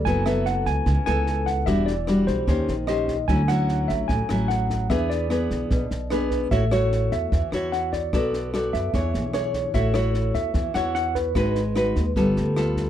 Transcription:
<<
  \new Staff \with { instrumentName = "Tine electric piano" } { \time 4/4 \key a \major \tempo 4 = 149 gis''8 e''8 fis''8 gis''4 gis''4 fis''8 | e''8 d''4 c''4. dis''4 | gis''8 fis''4 e''8 gis''4 fis''4 | e''8 d''2~ d''8 b'4 |
e''8 cis''4 e''4 r8 fis''8 d''8~ | d''4 r8 e''4. cis''4 | e''8 cis''4 e''4 fis''8 fis''8 b'8~ | b'2~ b'8 r4. | }
  \new Staff \with { instrumentName = "Nylon-string guitar" } { \time 4/4 \key a \major << { <b e' a'>8 <b e' a'>2 <b e' a'>4. | <g d' fis'>8 r8 <g d' fis'>4 <cis' g' bis'>8 r8 <cis' g' bis'>8 r8 | <fis cis' e'>8 <fis cis' e'>2 <fis cis' e'>4. | <b d' gis'>4 <b d' gis'>4. r8 <b d' gis'>4 |
<e' fis' cis''>8 <e' fis' cis''>2 <e' fis' cis''>4. | <fis' a' d''>4 <fis' a' d''>4 <d' gis' cis''>4 <d' gis' cis''>4 | <e' fis' cis''>8 <e' fis' cis''>2 <e' fis' cis''>4. | <dis' fis' b'>8 r8 <dis' fis' b'>8 r8 <b f' a'>4 <b f' a'>4 | } \\ { fis2 cis2 | e2 dis2 | d2 a,2 | e2 b,2 |
a2 e2 | b2 e2 | a2 e2 | gis2 g2 | } >> }
  \new Staff \with { instrumentName = "Upright bass" } { \clef bass \time 4/4 \key a \major fis,,4. cis,8 cis,16 r16 cis,4. | e,,4. b,,8 dis,8 ais,,4. | d,4. a,,8 a,,16 r16 a,,4. | e,4. b,,8 b,,16 r16 b,,4. |
a,,4. e,8 e,16 r16 e,4. | b,,4. fis,8 e,8 b,,4. | a,,4. e,8 e,16 r16 e,4. | gis,,4. dis,8 g,,8 d,4. | }
  \new DrumStaff \with { instrumentName = "Drums" } \drummode { \time 4/4 <bd sn>8 <ss sn>8 sn8 <bd sn>8 <bd sn>8 <ss sn>8 sn8 <bd sn>8 | <bd ss sn>8 sn8 <ss sn>8 <bd sn>8 <bd sn>8 sn8 <ss sn>8 <bd sn>8 | <bd sn>8 <ss sn>8 sn8 <bd sn>8 <bd sn>8 <ss sn>8 sn8 <bd sn>8 | <bd ss sn>8 sn8 <ss sn>8 <bd sn>8 <bd sn>8 sn8 <ss sn>8 <bd sn>8 |
<bd sn>8 <ss sn>8 sn8 <bd sn>8 <bd sn>8 <ss sn>8 sn8 <bd sn>8 | <bd ss sn>8 sn8 <ss sn>8 <bd sn>8 <bd sn>8 sn8 <ss sn>8 <bd sn>8 | <bd sn>8 <ss sn>8 sn8 <bd sn>8 <bd sn>8 <ss sn>8 sn8 <bd sn>8 | <bd ss sn>8 sn8 <ss sn>8 <bd sn>8 <bd sn>8 sn8 <ss sn>8 <bd sn>8 | }
>>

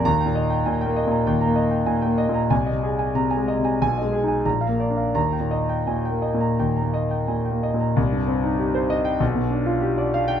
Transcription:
<<
  \new Staff \with { instrumentName = "Grand piano" } { \time 4/4 \key ees \major \tempo 4 = 93 << { bes''8 r2. r8 | r4 bes''16 r8. aes''8 r8 bes''8 r8 | bes''8 r2. r8 | \key g \phrygian r4. r16 g''16 r4. r16 g''16 | } \\ { r16 g''16 ees''16 g''16 aes''16 g''16 ees''16 bes''16 g''16 bes''16 ees''16 g''16 aes''16 g''16 ees''16 bes''16 | aes''16 ees''16 aes'16 aes''8 aes''16 ees''16 aes''16 r16 ees''16 aes'16 aes''16 r16 f''16 d''16 f''16 | r16 g''16 ees''16 g''16 aes''16 g''16 ees''16 bes''16 g''16 bes''16 ees''16 g''16 aes''16 g''16 ees''16 bes''16 | r1 | } >> }
  \new Staff \with { instrumentName = "Grand piano" } { \clef bass \time 4/4 \key ees \major \tuplet 3/2 { ees,8 bes,4 bes,8 bes8 bes,8 ees,8 bes4 bes,8 bes8 bes,8 } | \tuplet 3/2 { c,8 c4 c8 aes8 c8 ces,8 aes8 ees'8 bes,,8 bes8 d'8 } | \tuplet 3/2 { ees,8 bes,4 bes,8 bes8 bes,8 ees,8 bes4 bes,8 bes8 bes,8 } | \key g \phrygian c,16 g,16 c'16 ees'16 g'16 c''16 ees''8 b,,16 b,16 d'16 f'16 g'16 d''16 f''8 | }
>>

